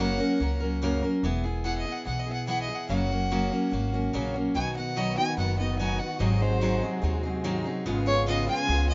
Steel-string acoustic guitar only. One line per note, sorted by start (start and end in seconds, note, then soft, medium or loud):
0.00 0.20 F#2 medium
0.00 0.20 C#3 medium
0.00 0.20 F#3 medium
0.00 0.19 A#3 medium
0.00 0.18 C#4 medium
0.00 0.18 A#4 medium
0.19 0.39 F#3 medium
0.19 0.40 A#3 soft
0.19 0.40 C#4 medium
0.19 0.40 A#4 medium
0.40 0.61 F#3 medium
0.40 0.61 A#3 medium
0.40 0.60 C#4 medium
0.40 0.59 A#4 medium
0.60 0.81 F#3 soft
0.60 0.82 A#3 soft
0.60 0.82 C#4 soft
0.60 0.82 A#4 medium
0.82 1.03 F#2 medium
0.82 1.03 C#3 medium
0.82 1.03 F#3 medium
0.82 1.03 A#3 loud
0.82 1.02 C#4 medium
0.82 1.01 A#4 medium
1.02 1.23 F#3 medium
1.02 1.24 A#3 medium
1.02 1.24 C#4 soft
1.02 1.23 A#4 medium
1.24 1.44 E3 medium
1.24 1.45 B3 medium
1.24 1.44 E4 medium
1.24 1.42 G#4 loud
1.44 1.64 B3 soft
1.44 1.64 E4 medium
1.44 1.65 G#4 medium
1.64 1.85 E3 medium
1.64 1.86 B3 medium
1.64 1.85 E4 medium
1.64 1.84 G#4 medium
1.85 2.05 B3 soft
1.85 2.06 G#4 medium
2.05 2.26 E3 medium
2.05 2.27 B3 medium
2.05 2.27 E4 medium
2.05 2.25 G#4 medium
2.26 2.47 B3 soft
2.26 2.47 E4 soft
2.26 2.48 G#4 soft
2.47 2.68 E3 medium
2.47 2.69 B3 medium
2.47 2.68 E4 medium
2.47 2.67 G#4 medium
2.68 2.90 B3 soft
2.68 2.90 E4 soft
2.68 2.89 G#4 medium
2.89 3.10 F#2 medium
2.89 3.10 C#3 medium
2.89 3.10 F#3 medium
2.89 3.10 A#3 medium
2.89 3.10 C#4 medium
2.89 3.09 F#4 medium
3.10 3.30 F#3 soft
3.10 3.31 A#3 soft
3.10 3.31 C#4 medium
3.10 3.31 F#4 medium
3.31 3.51 F#2 medium
3.31 3.52 C#3 medium
3.31 3.52 F#3 medium
3.31 3.51 A#3 medium
3.31 3.51 C#4 medium
3.31 3.49 F#4 medium
3.51 3.70 F#3 medium
3.51 3.72 A#3 medium
3.51 3.72 C#4 medium
3.51 3.72 F#4 medium
3.72 3.93 F#3 medium
3.72 3.93 A#3 medium
3.72 3.92 C#4 medium
3.72 3.91 F#4 medium
3.92 4.13 F#3 soft
3.92 4.13 A#3 soft
3.92 4.14 C#4 medium
3.92 4.13 F#4 soft
4.13 4.34 F#2 medium
4.13 4.34 C#3 loud
4.13 4.35 F#3 medium
4.13 4.35 A#3 loud
4.13 4.34 C#4 loud
4.13 4.33 F#4 loud
4.34 4.54 F#3 soft
4.34 4.56 A#3 soft
4.34 4.55 C#4 soft
4.34 4.55 F#4 medium
4.55 4.76 B2 medium
4.55 4.76 F#3 medium
4.55 4.76 B3 medium
4.55 4.76 D#4 medium
4.55 4.74 F#4 medium
4.75 4.96 B3 soft
4.75 4.96 D#4 soft
4.75 4.96 F#4 medium
4.96 5.17 B2 medium
4.96 5.17 F#3 medium
4.96 5.17 B3 medium
4.96 5.18 D#4 medium
4.96 5.16 F#4 medium
5.17 5.37 B3 soft
5.17 5.38 D#4 soft
5.17 5.38 F#4 medium
5.37 5.58 F#3 medium
5.37 5.59 B3 medium
5.37 5.58 D#4 medium
5.37 5.57 F#4 medium
5.58 5.79 B3 soft
5.58 5.80 D#4 soft
5.58 5.79 F#4 soft
5.79 6.00 B2 medium
5.79 6.00 F#3 medium
5.79 6.00 B3 medium
5.79 6.00 D#4 medium
5.79 5.98 F#4 medium
5.99 6.20 B3 soft
5.99 6.20 D#4 soft
5.99 6.20 F#4 medium
6.19 6.41 G#2 medium
6.19 6.41 D#3 medium
6.19 6.41 F#3 medium
6.19 6.41 C4 medium
6.19 6.41 D#4 medium
6.19 6.39 G#4 medium
6.40 6.61 F#3 soft
6.40 6.61 C4 medium
6.40 6.61 D#4 medium
6.40 6.61 G#4 medium
6.61 6.82 G#2 medium
6.61 6.82 D#3 medium
6.61 6.82 F#3 medium
6.61 6.82 C4 medium
6.61 6.82 D#4 medium
6.61 6.81 G#4 medium
6.82 7.00 F#3 soft
6.82 7.02 C4 medium
6.82 7.03 D#4 medium
6.82 7.03 G#4 medium
7.02 7.23 F#3 medium
7.02 7.24 C4 medium
7.02 7.23 D#4 medium
7.02 7.22 G#4 medium
7.23 7.43 F#3 soft
7.23 7.44 C4 medium
7.23 7.45 D#4 medium
7.23 7.44 G#4 medium
7.44 7.65 G#2 medium
7.44 7.65 D#3 loud
7.44 7.65 F#3 loud
7.44 7.65 C4 loud
7.44 7.64 D#4 medium
7.44 7.63 G#4 loud
7.64 7.86 F#3 soft
7.64 7.86 C4 medium
7.64 7.86 D#4 medium
7.64 7.85 G#4 medium
7.86 8.06 G#2 medium
7.86 8.07 C#3 medium
7.86 8.07 G#3 loud
7.86 8.06 B3 medium
7.86 8.05 F4 loud
7.86 8.04 G#4 loud
8.05 8.26 G#3 soft
8.05 8.26 B3 soft
8.05 8.27 F4 medium
8.05 8.27 G#4 medium
8.26 8.47 G#2 medium
8.26 8.48 C#3 medium
8.26 8.48 G#3 medium
8.26 8.48 B3 medium
8.26 8.47 F4 medium
8.26 8.46 G#4 medium
8.47 8.66 G#3 soft
8.47 8.67 B3 medium
8.47 8.68 F4 medium
8.47 8.68 G#4 medium
8.67 8.88 G#3 medium
8.67 8.89 B3 medium
8.67 8.88 F4 medium
8.67 8.87 G#4 medium
8.89 8.94 B3 soft
8.89 8.94 F4 soft
8.89 8.94 G#4 soft